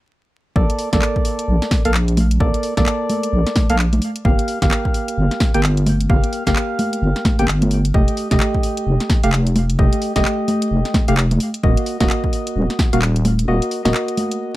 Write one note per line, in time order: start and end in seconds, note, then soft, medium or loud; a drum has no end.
0.56 0.68 A#1 loud
0.56 0.89 A#3 medium
0.56 0.89 A4 medium
0.56 0.89 D5 medium
0.56 kick loud
0.70 closed hi-hat medium
0.79 open hi-hat loud
0.93 1.01 A#1 medium
0.93 1.82 A#3 medium
0.93 1.82 A4 medium
0.93 1.82 D5 loud
0.93 kick loud
0.93 snare medium
0.93 closed hi-hat medium
1.02 clap loud
1.16 kick medium
1.25 open hi-hat medium
1.39 closed hi-hat medium
1.48 1.60 A#1 medium
1.62 snare soft
1.62 closed hi-hat soft
1.71 kick loud
1.71 snare medium
1.71 open hi-hat loud
1.85 2.39 A#1 medium
1.85 1.91 A#3 loud
1.85 1.92 A4 loud
1.85 1.92 F5 loud
1.85 closed hi-hat medium
1.94 clap loud
2.08 closed hi-hat medium
2.17 open hi-hat loud
2.17 high conga medium
2.31 closed hi-hat medium
2.40 2.53 A#1 medium
2.40 2.74 A#3 medium
2.40 2.74 A4 medium
2.40 2.74 D5 medium
2.40 kick loud
2.54 closed hi-hat medium
2.63 open hi-hat loud
2.77 2.85 A#1 medium
2.77 3.67 A#3 loud
2.77 3.67 A4 medium
2.77 3.67 D5 loud
2.77 kick medium
2.77 snare medium
2.77 closed hi-hat medium
2.86 clap loud
3.09 open hi-hat medium
3.09 high conga medium
3.23 closed hi-hat medium
3.33 3.45 A#1 medium
3.46 snare soft
3.46 closed hi-hat soft
3.56 kick loud
3.56 snare medium
3.56 open hi-hat loud
3.56 high conga medium
3.70 4.00 A#1 medium
3.70 3.76 A#3 loud
3.70 3.76 A4 medium
3.70 3.76 F5 loud
3.70 closed hi-hat medium
3.79 clap loud
3.93 closed hi-hat soft
3.93 high conga medium
4.02 open hi-hat medium
4.16 closed hi-hat medium
4.25 4.37 G1 loud
4.25 4.59 A#3 medium
4.25 4.59 G4 medium
4.25 4.59 F5 medium
4.25 kick loud
4.39 closed hi-hat medium
4.48 open hi-hat loud
4.62 4.70 G1 medium
4.62 5.52 A#3 medium
4.62 5.52 G4 medium
4.62 5.52 F5 loud
4.62 kick loud
4.62 snare medium
4.62 closed hi-hat medium
4.71 clap loud
4.85 kick medium
4.94 open hi-hat medium
5.08 closed hi-hat medium
5.17 5.30 G1 medium
5.31 snare soft
5.31 closed hi-hat soft
5.40 kick loud
5.40 snare medium
5.40 open hi-hat loud
5.54 6.08 G1 loud
5.54 5.61 A#3 loud
5.54 5.61 G4 loud
5.54 5.61 G5 loud
5.54 closed hi-hat medium
5.63 clap loud
5.77 closed hi-hat soft
5.87 open hi-hat medium
5.87 high conga medium
6.01 closed hi-hat medium
6.10 6.22 G1 loud
6.10 6.43 A#3 medium
6.10 6.43 G4 medium
6.10 6.43 F5 medium
6.10 kick loud
6.24 closed hi-hat medium
6.33 open hi-hat loud
6.47 6.55 G1 medium
6.47 7.36 A#3 loud
6.47 7.36 G4 medium
6.47 7.36 F5 loud
6.47 kick medium
6.47 snare medium
6.47 closed hi-hat medium
6.56 clap loud
6.79 open hi-hat medium
6.79 high conga medium
6.93 closed hi-hat medium
7.02 7.14 G1 medium
7.16 snare soft
7.16 closed hi-hat soft
7.25 kick loud
7.25 snare medium
7.25 open hi-hat medium
7.25 high conga medium
7.39 7.48 G1 medium
7.39 7.45 A#3 loud
7.39 7.45 G4 loud
7.39 7.45 G5 loud
7.39 closed hi-hat medium
7.48 7.92 G1 medium
7.48 clap loud
7.62 closed hi-hat medium
7.62 high conga medium
7.71 open hi-hat medium
7.85 closed hi-hat medium
7.94 8.06 F1 loud
7.94 8.28 A3 medium
7.94 8.28 G4 medium
7.94 8.28 D#5 medium
7.94 kick loud
8.08 closed hi-hat medium
8.17 open hi-hat loud
8.31 8.39 F1 medium
8.31 9.21 A3 loud
8.31 9.21 G4 medium
8.31 9.21 D#5 loud
8.31 kick loud
8.31 snare medium
8.31 closed hi-hat medium
8.40 clap loud
8.54 kick medium
8.63 open hi-hat medium
8.77 closed hi-hat medium
8.86 8.99 F1 medium
9.00 snare soft
9.00 closed hi-hat soft
9.10 kick loud
9.10 snare medium
9.10 open hi-hat loud
9.23 9.77 F1 medium
9.23 9.30 A3 loud
9.23 9.30 G4 loud
9.23 9.30 F5 loud
9.23 closed hi-hat medium
9.32 clap loud
9.47 closed hi-hat medium
9.56 open hi-hat medium
9.56 high conga medium
9.70 closed hi-hat medium
9.79 9.91 F1 loud
9.79 10.13 A3 medium
9.79 10.13 G4 medium
9.79 10.13 D#5 medium
9.79 kick loud
9.93 closed hi-hat medium
10.02 open hi-hat loud
10.16 10.24 F1 medium
10.16 11.05 A3 loud
10.16 11.05 G4 medium
10.16 11.05 D#5 loud
10.16 kick medium
10.16 snare medium
10.16 closed hi-hat medium
10.25 clap loud
10.48 open hi-hat medium
10.48 high conga medium
10.62 closed hi-hat medium
10.71 10.83 F1 medium
10.85 snare soft
10.85 closed hi-hat soft
10.94 kick loud
10.94 snare medium
10.94 open hi-hat loud
10.94 high conga medium
11.08 11.39 F1 medium
11.08 11.15 A3 loud
11.08 11.15 G4 medium
11.08 11.15 F5 loud
11.08 closed hi-hat medium
11.17 clap loud
11.31 closed hi-hat medium
11.31 high conga medium
11.40 open hi-hat loud
11.54 closed hi-hat medium
11.63 11.76 D#1 loud
11.63 11.97 A#3 medium
11.63 11.97 F#4 medium
11.63 11.97 D#5 medium
11.63 kick loud
11.77 closed hi-hat medium
11.86 open hi-hat loud
12.00 12.09 D#1 medium
12.00 12.90 A#3 medium
12.00 12.90 F#4 medium
12.00 12.90 D#5 loud
12.00 kick loud
12.00 snare medium
12.00 closed hi-hat medium
12.10 clap loud
12.24 kick medium
12.33 open hi-hat medium
12.47 closed hi-hat medium
12.56 12.68 D#1 medium
12.70 snare soft
12.70 closed hi-hat soft
12.79 kick loud
12.79 snare medium
12.79 open hi-hat loud
12.93 13.46 D#1 medium
12.93 12.99 A#3 loud
12.93 12.99 F#4 medium
12.93 12.99 F5 loud
12.93 closed hi-hat medium
13.02 clap loud
13.16 closed hi-hat medium
13.25 open hi-hat loud
13.25 high conga medium
13.39 closed hi-hat medium
13.48 13.60 D#1 loud
13.48 13.82 A#3 medium
13.48 13.82 F#4 medium
13.48 13.82 D#5 medium
13.62 closed hi-hat medium
13.71 open hi-hat loud
13.85 13.93 D#1 medium
13.85 14.56 A#3 medium
13.85 14.56 F#4 medium
13.85 14.56 D#5 loud
13.85 snare medium
13.85 closed hi-hat medium
13.94 clap loud
14.08 closed hi-hat soft
14.17 open hi-hat loud
14.17 high conga medium
14.31 closed hi-hat medium